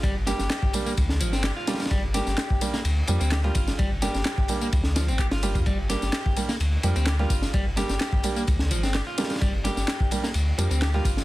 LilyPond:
<<
  \new Staff \with { instrumentName = "Clean electric guitar" } { \time 4/4 \key g \minor \tempo 4 = 128 g16 r16 g'4 r16 bes16 r8 f16 c'16 g'16 f'8. | g16 r16 g'4 r16 bes16 r8 f16 c'16 g'16 f'8. | g16 r16 g'4 r16 bes16 r8 f16 c'16 g'16 f'8. | g16 r16 g'4 r16 bes16 r8 f16 c'16 g'16 f'8. |
g16 r16 g'4 r16 bes16 r8 f16 c'16 g'16 f'8. | g16 r16 g'4 r16 bes16 r8 f16 c'16 g'16 f'8. | }
  \new Staff \with { instrumentName = "Grand piano" } { \time 4/4 \key g \minor r8 <g bes d' g'>16 r8. <g bes d' g'>16 r4. r16 <g bes d' g'>16 r16 | r8 <g bes d' g'>16 r8. <g bes d' g'>16 r8. <g bes d' g'>16 r8 <g bes d' g'>16 r8 | r8 <g bes d' g'>16 r8. <g bes d' g'>16 r4. r16 <g bes d' g'>16 r16 | r8 <g bes d' g'>16 r8. <g bes d' g'>16 r8. <g bes d' g'>16 r8 <g bes d' g'>16 r8 |
r8 <g bes d' g'>16 r8. <g bes d' g'>16 r4. r16 <g bes d' g'>16 r16 | r8 <g bes d' g'>16 r8. <g bes d' g'>16 r8. <g bes d' g'>16 r8 <g bes d' g'>16 r8 | }
  \new Staff \with { instrumentName = "Sub bass" } { \clef bass \time 4/4 \key g \minor g,,16 g,,16 r16 g,,16 r16 g,,16 r8 d,8 g,,8. r8. | g,,16 g,,16 r16 g,,16 r16 g,,16 r8 d,16 r16 f,16 d,8. g,,16 r16 | g,,16 g,,16 r16 g,,16 r16 g,,16 r8 d,8. g,,4 g,16 | g,,16 g,,16 r16 g,,16 r16 g,,16 r8 d,16 r16 f,16 d,8. g,,16 r16 |
g,,16 g,,16 r16 g,,16 r16 g,,16 r8 d,8 g,,8. r8. | g,,16 g,,16 r16 g,,16 r16 g,,16 r8 d,16 r16 f,16 d,8. g,,16 r16 | }
  \new DrumStaff \with { instrumentName = "Drums" } \drummode { \time 4/4 <bd cymr tamb>8 <cymr sn tamb>16 <sn tamb>16 <hc cymr sn tamb>16 bd16 <cymr tamb>16 tamb16 <bd cymr tamb>16 sn16 <cymr tamb>16 <sn tamb>16 <hc cymr sn tamb>8 <cymr sn tamb>32 <cymr sn>32 <cymr sn tamb>32 <cymr sn>32 | <bd cymr tamb>8 <cymr sn tamb>16 <sn tamb>16 <hc cymr sn tamb>16 bd16 <cymr tamb>16 <sn tamb>16 <cymr tamb>8 <cymr tamb>16 <cymr tamb>16 <hc cymr sn tamb>16 cymr16 <bd cymr tamb>16 <sn tamb>16 | <bd cymr tamb>8 <cymr sn tamb>16 <sn tamb>16 <hc cymr sn tamb>16 bd16 <cymr tamb>16 tamb16 <bd cymr tamb>16 sn16 <cymr sn tamb>16 <cymr tamb>16 <hc bd cymr tamb>16 <cymr sn>16 <cymr tamb>16 <bd cymr tamb>16 | <bd cymr tamb>8 <cymr sn tamb>16 <sn tamb>16 <hc cymr sn tamb>16 bd16 <cymr tamb>16 <sn tamb>16 <cymr tamb>8 <cymr tamb>16 <cymr tamb>16 <hc cymr sn tamb>16 cymr16 <bd cymr tamb>16 <sn tamb>16 |
<bd cymr tamb>8 <cymr sn tamb>16 <sn tamb>16 <hc cymr sn tamb>16 bd16 <cymr tamb>16 tamb16 <bd cymr tamb>16 sn16 <cymr tamb>16 <sn tamb>16 <hc cymr sn tamb>8 <cymr sn tamb>32 <cymr sn>32 <cymr sn tamb>32 <cymr sn>32 | <bd cymr tamb>8 <cymr sn tamb>16 <sn tamb>16 <hc cymr sn tamb>16 bd16 <cymr tamb>16 <sn tamb>16 <cymr tamb>8 <cymr tamb>16 <cymr tamb>16 <hc cymr sn tamb>16 cymr16 <bd cymr tamb>16 <sn tamb>16 | }
>>